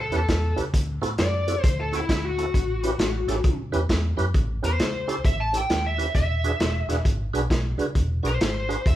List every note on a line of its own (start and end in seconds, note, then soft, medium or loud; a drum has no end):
0.01 0.14 A4 medium
0.12 0.25 E2 medium
0.12 0.20 C#4 medium
0.12 0.20 E4 medium
0.12 0.20 G4 medium
0.12 0.20 B4 medium
0.12 closed hi-hat medium
0.16 0.59 A4 medium
0.29 0.52 E2 medium
0.29 kick medium
0.29 snare loud
0.29 closed hi-hat medium
0.56 0.65 C#4 medium
0.56 0.65 E4 medium
0.56 0.65 G4 medium
0.56 0.65 B4 medium
0.56 closed hi-hat soft
0.74 0.97 D2 loud
0.74 kick medium
0.74 closed hi-hat medium
1.02 1.15 A2 medium
1.02 1.10 C4 medium
1.02 1.10 E4 medium
1.02 1.10 F#4 medium
1.02 1.10 A4 medium
1.02 closed hi-hat medium
1.18 1.55 F#2 medium
1.18 1.62 D5 loud
1.18 snare loud
1.18 closed hi-hat medium
1.47 1.55 C4 medium
1.47 1.56 E4 medium
1.47 1.56 F#4 medium
1.47 1.56 A4 medium
1.47 closed hi-hat medium
1.62 2.00 D2 medium
1.62 1.78 C5 loud
1.62 kick loud
1.62 closed hi-hat medium
1.81 1.94 A4 medium
1.92 2.00 C4 medium
1.92 2.00 E4 medium
1.92 2.09 E4 medium
1.92 2.01 F#4 medium
1.92 2.01 A4 medium
1.92 closed hi-hat medium
2.09 2.45 D2 medium
2.09 2.25 E4 medium
2.09 kick medium
2.09 snare loud
2.09 closed hi-hat medium
2.25 3.56 F#4 medium
2.38 2.46 C4 medium
2.38 2.46 E4 medium
2.38 2.46 F#4 medium
2.38 2.46 A4 medium
2.38 closed hi-hat medium
2.54 2.90 A1 medium
2.54 kick medium
2.54 closed hi-hat medium
2.83 2.91 C#4 medium
2.83 2.91 E4 medium
2.83 2.91 G4 medium
2.83 2.91 B4 medium
2.83 closed hi-hat medium
2.98 3.22 A1 medium
2.98 snare loud
2.98 closed hi-hat medium
3.27 3.40 A1 medium
3.27 3.36 C#4 medium
3.27 3.36 E4 medium
3.27 3.36 G4 medium
3.27 3.36 A4 loud
3.27 snare soft
3.27 closed hi-hat medium
3.44 3.67 C#2 medium
3.44 kick loud
3.44 closed hi-hat medium
3.72 3.85 E2 medium
3.72 3.81 C#4 medium
3.72 3.81 E4 medium
3.72 3.81 G4 medium
3.72 3.81 B4 loud
3.72 closed hi-hat medium
3.89 4.13 E2 medium
3.89 kick medium
3.89 snare loud
3.89 closed hi-hat medium
4.17 4.31 F#2 medium
4.17 4.25 C#4 medium
4.17 4.26 E4 medium
4.17 4.25 G4 medium
4.17 4.26 B4 medium
4.17 closed hi-hat soft
4.34 4.57 A1 loud
4.34 kick loud
4.34 closed hi-hat medium
4.62 4.76 E2 medium
4.62 4.71 C#4 medium
4.62 4.71 E4 medium
4.62 4.71 G4 medium
4.62 4.71 B4 medium
4.62 5.23 C5 medium
4.62 closed hi-hat medium
4.79 5.15 C#2 medium
4.79 snare loud
4.79 closed hi-hat medium
5.08 5.16 C#4 medium
5.08 5.16 E4 medium
5.08 5.16 G4 medium
5.08 5.16 A4 medium
5.08 closed hi-hat medium
5.24 5.61 A1 medium
5.24 5.39 E5 medium
5.24 kick loud
5.24 closed hi-hat medium
5.40 5.57 A5 medium
5.53 5.61 C#4 medium
5.53 5.61 E4 medium
5.53 5.61 G4 medium
5.53 5.61 A4 medium
5.53 closed hi-hat medium
5.57 5.85 G5 medium
5.70 6.06 D#2 medium
5.70 snare medium
5.70 closed hi-hat medium
5.86 6.15 E5 medium
5.98 6.06 C#4 medium
5.98 6.06 E4 medium
5.98 6.06 G4 medium
5.98 6.06 B4 medium
5.98 closed hi-hat medium
6.15 6.51 E1 medium
6.15 7.03 E5 medium
6.15 kick medium
6.15 closed hi-hat medium
6.44 6.52 D4 medium
6.44 6.52 F#4 medium
6.44 6.52 G#4 medium
6.44 6.52 B4 medium
6.44 closed hi-hat medium
6.59 6.83 E1 medium
6.59 snare loud
6.59 closed hi-hat medium
6.88 7.01 E1 medium
6.88 6.97 D4 medium
6.88 6.97 F#4 medium
6.88 6.97 G#4 medium
6.88 6.97 B4 medium
6.88 snare soft
6.88 closed hi-hat medium
7.05 7.28 G#1 medium
7.05 kick loud
7.05 closed hi-hat medium
7.33 7.46 B1 medium
7.33 7.42 D4 medium
7.33 7.42 F#4 medium
7.33 7.41 G#4 medium
7.33 7.42 B4 loud
7.33 closed hi-hat medium
7.50 7.73 B1 medium
7.50 kick medium
7.50 snare medium
7.50 closed hi-hat medium
7.78 7.86 D4 medium
7.78 7.86 F#4 medium
7.78 7.86 G#4 medium
7.78 7.87 B4 medium
7.78 closed hi-hat medium
7.95 8.18 E1 loud
7.95 kick loud
7.95 closed hi-hat medium
8.23 8.36 B1 medium
8.23 8.31 D4 medium
8.23 8.31 F#4 medium
8.23 8.31 G#4 medium
8.23 8.32 B4 medium
8.23 closed hi-hat medium
8.28 8.84 C5 medium
8.38 8.75 G#1 medium
8.38 snare loud
8.38 closed hi-hat medium
8.69 8.77 D4 medium
8.69 8.77 F#4 medium
8.69 8.77 G#4 medium
8.69 8.77 B4 medium
8.69 closed hi-hat medium
8.86 8.96 E1 medium
8.86 8.96 E5 medium
8.86 kick loud
8.86 closed hi-hat medium